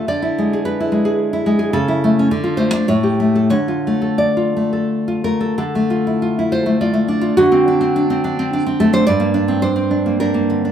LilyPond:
\new Staff \with { instrumentName = "Nylon-string guitar" } { \time 3/4 \key d \minor \tempo 4 = 105 << { d''4 b'4 r4 | a'4. c''8 cis''4 | cis''4 d''4. bes'8 | a'4. c''8 d''4 |
fis'2~ fis'8 a'16 c''16 | d''4 c''4 bes'4 | } \\ { d16 e'16 gis16 gis'8 e'16 gis16 gis'8 e'16 gis16 gis'16 | cis16 e'16 a16 cis'16 d16 f'16 a16 d'16 a,16 g'16 a16 a'16 | d16 f'16 a16 a'8 f'16 a16 a'8 f'16 a16 a'16 | d16 a16 f'16 e'16 f'16 e'16 f'16 a16 f'16 a16 d'16 f'16 |
d16 c'16 d'16 c'16 d'16 c'16 d'16 c'16 d'16 c'16 a16 d'16 | g,16 bes16 d'16 c'16 d'16 c'16 d'16 bes16 d'16 bes16 d16 d'16 | } >> }